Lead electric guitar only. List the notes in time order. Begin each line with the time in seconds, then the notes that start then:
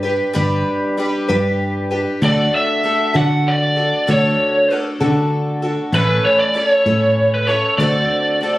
2.25 D5
2.55 E5
3.17 F#5
3.48 D5
4.11 C#5
5.96 B4
6.25 C#5
6.39 D5
6.57 D5
6.68 C#5
7.34 B4
7.47 C#5
7.78 D5